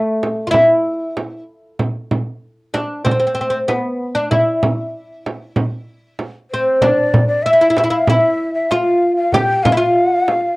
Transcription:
Already playing: oud A3
0.23 frame drum
0.47 oud E4 F4
0.54 frame drum
1.17 frame drum
1.79 frame drum
2.11 frame drum
2.74 oud D4, frame drum
3.05 oud C4, frame drum
3.11 oud C4
3.20 oud C4
3.27 oud C4
3.35 oud C4
3.41 oud C4
3.50 oud C4
3.68 oud B3, frame drum
4.15 oud D4
4.31 oud E4, frame drum
4.63 frame drum
5.26 frame drum
5.56 frame drum
6.19 frame drum
6.51 oud C4, ney C5
6.81 oud D4, ney D5, darbuka dum, frame drum
6.99 darbuka ka
7.14 darbuka dum, frame drum
7.28 ney D5
7.43 oud E4, ney E5, darbuka ka
7.53 oud E4
7.61 oud E4
7.70 oud E4
7.76 oud E4, darbuka tek, frame drum
7.84 oud E4
7.90 oud E4, ney F5
8.07 oud E4, ney E5, frame drum, darbuka dum
8.39 darbuka ka
8.54 ney E5
8.70 oud F4, ney F5, darbuka tek, frame drum
9.02 darbuka ka
9.16 ney F5, darbuka ka
9.32 oud G4, ney G5, darbuka dum, frame drum
9.63 oud F4, ney F5, darbuka dum, frame drum
9.72 oud E4
9.77 oud F4, ney F5
9.97 darbuka ka
10.12 darbuka ka
10.28 frame drum

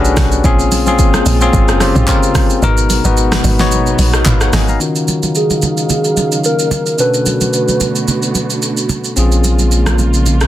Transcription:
Already playing: log drum bass B1, string section D3 D#3 A3 B3, tine electric piano C#4 D4 F#4 G4 G#4 A4 B4
0.05 shaker
0.17 log drum bass B1, kick, cross-stick, snare, open hi-hat, high conga, low conga, shaker
0.32 shaker
0.44 log drum bass A#1, string section C#3 G#3 A#3 F4, tine electric piano C4 C#4 F4 G#4, kick, shaker
0.59 shaker
0.72 open hi-hat, high conga, shaker
0.86 tine electric piano C4 C#4 F4 G#4, high conga, shaker
0.99 kick, shaker
1.14 cross-stick, high conga, shaker
1.26 log drum bass A#1, open hi-hat, high conga, low conga, shaker
1.41 tine electric piano C4 C#4 F4 G#4, high conga, shaker
1.53 log drum bass G#1, kick, shaker
1.68 log drum bass F#1, cross-stick, shaker
1.80 tine electric piano C4 C#4 F4 G4, cross-stick, open hi-hat, high conga, shaker
1.96 log drum bass A#1, mid tom, shaker
2.08 tine electric piano C4 C#4 F4 A#4, kick, clap, shaker
2.23 shaker
2.35 kick, cross-stick, open hi-hat, high conga, low conga, shaker
2.50 shaker
2.62 log drum bass G#1, string section B2 F#3 B3, tine electric piano B3 D#4 F#4 A#4, shaker
2.78 shaker
2.90 open hi-hat, high conga, shaker
3.05 log drum bass G#1, tine electric piano B3 D#4 F#4 B4, high conga, shaker
3.17 shaker
3.32 cross-stick, snare, high conga, shaker
3.44 log drum bass G#1, open hi-hat, high conga, low conga, shaker
3.59 tine electric piano B3 D#4 F#4 C#5, snare, high conga, shaker
3.72 shaker
3.86 shaker
3.99 log drum bass A#1, open hi-hat, high conga, shaker
4.14 tine electric piano A#4 D#5, cross-stick, shaker
4.26 log drum bass G#1, tine electric piano B4 F5, clap, mid tom, shaker
4.41 tine electric piano C#5 F#5, cross-stick, shaker
4.53 log drum bass G#1, tine electric piano D#5 G#5, cross-stick, snare, open hi-hat, high conga, low conga, shaker
4.68 tine electric piano F5 A#5, shaker
4.80 string section C#3 F#3 D#4 F5, tine electric piano D#3 C#4 F4 F#4 A#4, shaker
4.96 shaker
5.08 high conga, shaker
5.23 high conga, shaker
5.35 soft synth lead G#4, shaker
5.50 high conga, shaker
5.62 high conga, low conga, shaker
5.77 shaker
5.90 low conga, shaker
6.05 shaker
6.17 high conga, shaker
6.32 shaker
6.44 soft synth lead A#4, shaker
6.59 shaker
6.71 high conga, low conga, shaker
6.86 shaker
6.98 tine electric piano B2 C#4 D4 F#4 A4, string section D3 A3 B3 F#4, soft synth lead B4, shaker
7.14 shaker
7.26 high conga, shaker
7.41 high conga, shaker
7.53 shaker
7.68 high conga, shaker
7.81 high conga, low conga, shaker
7.96 shaker
8.08 low conga, shaker
8.23 shaker
8.35 high conga, shaker
8.50 shaker
8.62 shaker
8.77 shaker
8.89 high conga, low conga, shaker
9.04 shaker
9.16 analog synth bass A#1, string section C#3 G#3 A#3 F4, tine electric piano C4 C#4 F4 G#4, shaker
9.32 shaker
9.44 high conga, shaker
9.59 high conga, shaker
9.71 shaker
9.86 cross-stick, high conga, shaker
9.99 high conga, low conga, shaker
10.14 shaker
10.26 low conga, shaker
10.41 cross-stick, shaker

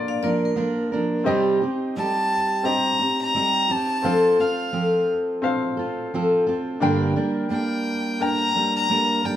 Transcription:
Already playing: steel-string acoustic guitar F3 A#3 D4 A#4, felt piano A#3 F4 D5
0.08 vibraphone D5 F5
0.23 steel-string acoustic guitar F3 A#3 D4 A#4, vibraphone A#4 D5
0.45 vibraphone A#4
0.56 steel-string acoustic guitar F3 A#3 D4 A#4
0.92 steel-string acoustic guitar F3 A#3 D4 A#4
1.24 steel-string acoustic guitar C3 G3 C4 D#4 G4, felt piano C4 G4 D#5
1.61 steel-string acoustic guitar C4 D#4 G4
1.96 steel-string acoustic guitar G3 C4 D#4 G4, violin A5
2.63 felt piano C4 G4 D#5, violin A#5
2.99 steel-string acoustic guitar C4 D#4 G4
3.23 violin A#5
3.35 steel-string acoustic guitar G3 C4 D#4 G4
3.70 steel-string acoustic guitar C4 D#4 G4, violin A5
4.03 steel-string acoustic guitar F3 C4 F4 A4, felt piano C4 A4 F5
4.39 steel-string acoustic guitar C4 F4 A4, violin F5
4.73 steel-string acoustic guitar F3 C4 F4 A4
5.42 felt piano C4 A4 F5
5.77 steel-string acoustic guitar C4 F4 A4
6.14 steel-string acoustic guitar F3 C4 F4 A4
6.47 steel-string acoustic guitar C4 F4 A4
6.80 steel-string acoustic guitar G2 D3 G3 A#3 D4 A#4, felt piano D4 A#4 G5
7.16 steel-string acoustic guitar G3 A#3 D4 A#4
7.49 steel-string acoustic guitar G3 A#3 D4 A#4, violin G5
8.20 felt piano D4 A#4 G5, violin A#5
8.54 steel-string acoustic guitar G3 A#3 D4 A#4
8.76 violin A#5
8.89 steel-string acoustic guitar G3 A#3 D4 A#4
9.24 steel-string acoustic guitar G3 A#3 D4 A#4, violin G5

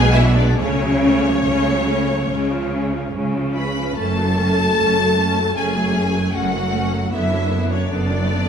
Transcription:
Already playing: double bass section B1, cello section B2, viola section G#3 B3, violin section G#4 G#5
0.14 viola section B3 D4, violin section E4 E5
0.35 viola section G#3 B3, violin section D4 D5
0.57 double bass section C#2, cello section C#3, viola section A3 C#4, violin section C#4 C#5
0.81 viola section F#3 A3
1.03 viola section A3 C#4
1.24 viola section F#3 A3
1.46 double bass section C#2, cello section C#3, viola section A3 C#4
1.67 viola section F#3 A3
1.88 viola section A3 C#4
2.09 viola section F#3 A3
2.30 double bass section C#2, cello section C#3, viola section G#3 C#4
2.52 viola section F3 F4
2.73 viola section G#3 C#4
2.93 viola section F3 F4
3.14 double bass section C#2, cello section C#3, viola section G#3 C#4
3.35 viola section F3 F4
3.55 viola section G#3 C#4, violin section B4 B5
3.78 viola section F3 F4
3.96 double bass section F#1, cello section F#2, viola section A3 C#4, violin section A4 A5
4.17 viola section F#3 A3
4.38 viola section A3 C#4
4.58 viola section F#3 A3
4.78 double bass section F#1, cello section F#2, viola section A3 C#4
4.98 viola section F#3 A3
5.16 viola section A3 C#4
5.37 viola section F#3 A3
5.55 double bass section F#1, cello section F#2, viola section A3 C#4, violin section G#4 G#5
5.74 viola section F#3 A3
5.94 viola section A3 C#4
6.14 viola section F#3 A3
6.33 double bass section F#1, cello section F#2, viola section A3 C#4, violin section F#4 F#5
6.52 viola section F#3 A3
6.71 viola section A3 C#4
6.91 viola section F#3 A3
7.10 double bass section F#1, cello section F#2, viola section D3 B3, violin section E4 E5
7.31 viola section F#3 D4
7.51 viola section D3 B3
7.70 viola section F#3 D4, violin section C#4 C#5
7.89 double bass section F#1, cello section F#2, viola section D3 B3, violin section D4 D5
8.09 viola section F#3 D4
8.26 viola section D3 B3

